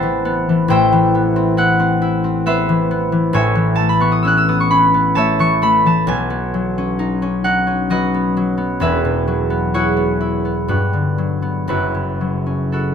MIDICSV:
0, 0, Header, 1, 2, 480
1, 0, Start_track
1, 0, Tempo, 887574
1, 376, Time_signature, 3, 2, 24, 8
1, 2291, Tempo, 913242
1, 4691, Tempo, 940439
1, 5651, Tempo, 1025641
1, 6710, End_track
2, 0, Start_track
2, 0, Title_t, "Harp"
2, 0, Program_c, 0, 46
2, 0, Note_on_c, 0, 33, 69
2, 0, Note_on_c, 0, 45, 80
2, 0, Note_on_c, 0, 57, 64
2, 0, Note_on_c, 0, 59, 61
2, 0, Note_on_c, 0, 60, 47
2, 0, Note_on_c, 0, 64, 59
2, 0, Note_on_c, 0, 69, 67
2, 0, Note_on_c, 0, 71, 68
2, 0, Note_on_c, 0, 72, 73
2, 0, Note_on_c, 0, 76, 69
2, 0, Note_on_c, 0, 81, 92
2, 15, Note_on_c, 0, 52, 56
2, 129, Note_off_c, 0, 59, 0
2, 136, Note_on_c, 0, 59, 62
2, 259, Note_off_c, 0, 52, 0
2, 266, Note_on_c, 0, 52, 58
2, 363, Note_off_c, 0, 33, 0
2, 369, Note_on_c, 0, 33, 76
2, 373, Note_off_c, 0, 45, 0
2, 376, Note_off_c, 0, 72, 0
2, 376, Note_off_c, 0, 76, 0
2, 378, Note_on_c, 0, 45, 70
2, 379, Note_on_c, 0, 79, 98
2, 381, Note_on_c, 0, 72, 70
2, 384, Note_on_c, 0, 76, 74
2, 398, Note_off_c, 0, 81, 0
2, 400, Note_off_c, 0, 52, 0
2, 400, Note_off_c, 0, 57, 0
2, 403, Note_off_c, 0, 69, 0
2, 500, Note_on_c, 0, 52, 60
2, 613, Note_off_c, 0, 59, 0
2, 620, Note_on_c, 0, 59, 55
2, 729, Note_off_c, 0, 60, 0
2, 735, Note_on_c, 0, 60, 64
2, 844, Note_off_c, 0, 64, 0
2, 850, Note_on_c, 0, 64, 65
2, 855, Note_on_c, 0, 78, 100
2, 965, Note_off_c, 0, 60, 0
2, 971, Note_on_c, 0, 60, 65
2, 1036, Note_off_c, 0, 71, 0
2, 1084, Note_off_c, 0, 64, 0
2, 1090, Note_on_c, 0, 64, 61
2, 1205, Note_off_c, 0, 60, 0
2, 1212, Note_on_c, 0, 60, 53
2, 1325, Note_off_c, 0, 59, 0
2, 1325, Note_off_c, 0, 76, 0
2, 1330, Note_off_c, 0, 72, 0
2, 1330, Note_on_c, 0, 59, 57
2, 1333, Note_on_c, 0, 76, 90
2, 1335, Note_on_c, 0, 71, 68
2, 1338, Note_on_c, 0, 72, 74
2, 1448, Note_off_c, 0, 52, 0
2, 1454, Note_on_c, 0, 52, 57
2, 1566, Note_off_c, 0, 59, 0
2, 1573, Note_on_c, 0, 59, 57
2, 1665, Note_off_c, 0, 78, 0
2, 1682, Note_off_c, 0, 52, 0
2, 1688, Note_on_c, 0, 52, 55
2, 1794, Note_off_c, 0, 33, 0
2, 1800, Note_off_c, 0, 45, 0
2, 1801, Note_on_c, 0, 33, 73
2, 1806, Note_on_c, 0, 45, 74
2, 1807, Note_off_c, 0, 76, 0
2, 1808, Note_on_c, 0, 80, 100
2, 1810, Note_on_c, 0, 73, 73
2, 1815, Note_on_c, 0, 76, 75
2, 1826, Note_off_c, 0, 52, 0
2, 1826, Note_off_c, 0, 60, 0
2, 1826, Note_off_c, 0, 79, 0
2, 1829, Note_off_c, 0, 72, 0
2, 1922, Note_on_c, 0, 52, 59
2, 2031, Note_on_c, 0, 81, 93
2, 2046, Note_on_c, 0, 57, 54
2, 2104, Note_on_c, 0, 83, 71
2, 2158, Note_off_c, 0, 59, 0
2, 2165, Note_on_c, 0, 59, 66
2, 2170, Note_off_c, 0, 81, 0
2, 2170, Note_on_c, 0, 85, 77
2, 2218, Note_off_c, 0, 83, 0
2, 2227, Note_on_c, 0, 87, 81
2, 2263, Note_off_c, 0, 85, 0
2, 2286, Note_on_c, 0, 88, 79
2, 2296, Note_on_c, 0, 61, 64
2, 2305, Note_off_c, 0, 87, 0
2, 2310, Note_on_c, 0, 90, 87
2, 2353, Note_off_c, 0, 88, 0
2, 2363, Note_on_c, 0, 88, 81
2, 2391, Note_off_c, 0, 90, 0
2, 2417, Note_off_c, 0, 59, 0
2, 2423, Note_on_c, 0, 59, 66
2, 2423, Note_on_c, 0, 87, 84
2, 2451, Note_off_c, 0, 88, 0
2, 2484, Note_on_c, 0, 85, 78
2, 2517, Note_off_c, 0, 87, 0
2, 2533, Note_off_c, 0, 61, 0
2, 2537, Note_on_c, 0, 83, 88
2, 2540, Note_on_c, 0, 61, 60
2, 2582, Note_off_c, 0, 85, 0
2, 2655, Note_off_c, 0, 59, 0
2, 2661, Note_on_c, 0, 59, 57
2, 2770, Note_off_c, 0, 57, 0
2, 2772, Note_on_c, 0, 81, 104
2, 2776, Note_off_c, 0, 73, 0
2, 2777, Note_off_c, 0, 76, 0
2, 2777, Note_on_c, 0, 57, 65
2, 2780, Note_on_c, 0, 73, 76
2, 2785, Note_on_c, 0, 76, 78
2, 2892, Note_off_c, 0, 52, 0
2, 2899, Note_on_c, 0, 52, 60
2, 2904, Note_on_c, 0, 85, 97
2, 3013, Note_off_c, 0, 57, 0
2, 3014, Note_off_c, 0, 83, 0
2, 3017, Note_on_c, 0, 57, 64
2, 3022, Note_on_c, 0, 83, 101
2, 3101, Note_off_c, 0, 85, 0
2, 3137, Note_off_c, 0, 52, 0
2, 3141, Note_off_c, 0, 81, 0
2, 3143, Note_on_c, 0, 52, 52
2, 3147, Note_on_c, 0, 81, 82
2, 3174, Note_off_c, 0, 64, 0
2, 3221, Note_off_c, 0, 83, 0
2, 3254, Note_on_c, 0, 35, 73
2, 3255, Note_off_c, 0, 80, 0
2, 3260, Note_on_c, 0, 47, 71
2, 3262, Note_on_c, 0, 80, 91
2, 3269, Note_off_c, 0, 33, 0
2, 3272, Note_off_c, 0, 45, 0
2, 3276, Note_off_c, 0, 57, 0
2, 3277, Note_off_c, 0, 76, 0
2, 3278, Note_off_c, 0, 52, 0
2, 3345, Note_off_c, 0, 81, 0
2, 3370, Note_off_c, 0, 59, 0
2, 3376, Note_on_c, 0, 59, 55
2, 3412, Note_off_c, 0, 71, 0
2, 3501, Note_on_c, 0, 54, 57
2, 3621, Note_off_c, 0, 61, 0
2, 3627, Note_on_c, 0, 61, 62
2, 3738, Note_on_c, 0, 63, 65
2, 3853, Note_off_c, 0, 61, 0
2, 3860, Note_on_c, 0, 61, 60
2, 3972, Note_off_c, 0, 63, 0
2, 3976, Note_on_c, 0, 78, 90
2, 3978, Note_on_c, 0, 63, 65
2, 4089, Note_off_c, 0, 61, 0
2, 4095, Note_on_c, 0, 61, 53
2, 4211, Note_off_c, 0, 54, 0
2, 4216, Note_on_c, 0, 54, 57
2, 4220, Note_on_c, 0, 75, 89
2, 4223, Note_on_c, 0, 66, 65
2, 4227, Note_on_c, 0, 71, 61
2, 4338, Note_off_c, 0, 59, 0
2, 4344, Note_on_c, 0, 59, 50
2, 4455, Note_off_c, 0, 54, 0
2, 4462, Note_on_c, 0, 54, 54
2, 4482, Note_off_c, 0, 80, 0
2, 4566, Note_off_c, 0, 59, 0
2, 4572, Note_on_c, 0, 59, 52
2, 4689, Note_on_c, 0, 28, 64
2, 4695, Note_on_c, 0, 40, 63
2, 4697, Note_off_c, 0, 71, 0
2, 4698, Note_on_c, 0, 76, 88
2, 4700, Note_on_c, 0, 68, 60
2, 4704, Note_on_c, 0, 71, 68
2, 4712, Note_off_c, 0, 35, 0
2, 4714, Note_off_c, 0, 61, 0
2, 4715, Note_off_c, 0, 47, 0
2, 4715, Note_off_c, 0, 73, 0
2, 4715, Note_off_c, 0, 75, 0
2, 4716, Note_off_c, 0, 63, 0
2, 4816, Note_on_c, 0, 47, 52
2, 4926, Note_off_c, 0, 54, 0
2, 4932, Note_on_c, 0, 54, 51
2, 5041, Note_off_c, 0, 59, 0
2, 5048, Note_on_c, 0, 59, 53
2, 5168, Note_off_c, 0, 66, 0
2, 5170, Note_on_c, 0, 64, 55
2, 5171, Note_off_c, 0, 68, 0
2, 5171, Note_on_c, 0, 73, 78
2, 5174, Note_on_c, 0, 66, 64
2, 5177, Note_on_c, 0, 68, 63
2, 5279, Note_off_c, 0, 59, 0
2, 5285, Note_on_c, 0, 59, 50
2, 5401, Note_off_c, 0, 64, 0
2, 5407, Note_on_c, 0, 64, 49
2, 5525, Note_off_c, 0, 59, 0
2, 5532, Note_on_c, 0, 59, 40
2, 5648, Note_off_c, 0, 71, 0
2, 5650, Note_off_c, 0, 66, 0
2, 5651, Note_on_c, 0, 43, 62
2, 5654, Note_on_c, 0, 66, 43
2, 5654, Note_on_c, 0, 71, 52
2, 5658, Note_on_c, 0, 67, 40
2, 5670, Note_off_c, 0, 28, 0
2, 5671, Note_off_c, 0, 64, 0
2, 5673, Note_off_c, 0, 40, 0
2, 5673, Note_off_c, 0, 76, 0
2, 5674, Note_off_c, 0, 47, 0
2, 5676, Note_off_c, 0, 68, 0
2, 5767, Note_on_c, 0, 50, 42
2, 5879, Note_off_c, 0, 54, 0
2, 5884, Note_on_c, 0, 54, 45
2, 5959, Note_off_c, 0, 78, 0
2, 5984, Note_off_c, 0, 73, 0
2, 5991, Note_off_c, 0, 59, 0
2, 5997, Note_on_c, 0, 59, 41
2, 6115, Note_on_c, 0, 30, 47
2, 6116, Note_off_c, 0, 71, 0
2, 6118, Note_on_c, 0, 42, 52
2, 6120, Note_off_c, 0, 66, 0
2, 6121, Note_on_c, 0, 71, 62
2, 6123, Note_on_c, 0, 64, 53
2, 6127, Note_on_c, 0, 66, 51
2, 6143, Note_off_c, 0, 59, 0
2, 6147, Note_off_c, 0, 43, 0
2, 6147, Note_off_c, 0, 50, 0
2, 6150, Note_off_c, 0, 67, 0
2, 6241, Note_on_c, 0, 49, 40
2, 6359, Note_off_c, 0, 54, 0
2, 6364, Note_on_c, 0, 54, 38
2, 6484, Note_on_c, 0, 61, 41
2, 6604, Note_off_c, 0, 66, 0
2, 6605, Note_off_c, 0, 64, 0
2, 6605, Note_on_c, 0, 69, 47
2, 6609, Note_on_c, 0, 64, 34
2, 6611, Note_on_c, 0, 66, 35
2, 6710, Note_off_c, 0, 30, 0
2, 6710, Note_off_c, 0, 42, 0
2, 6710, Note_off_c, 0, 49, 0
2, 6710, Note_off_c, 0, 54, 0
2, 6710, Note_off_c, 0, 61, 0
2, 6710, Note_off_c, 0, 64, 0
2, 6710, Note_off_c, 0, 66, 0
2, 6710, Note_off_c, 0, 69, 0
2, 6710, Note_off_c, 0, 71, 0
2, 6710, End_track
0, 0, End_of_file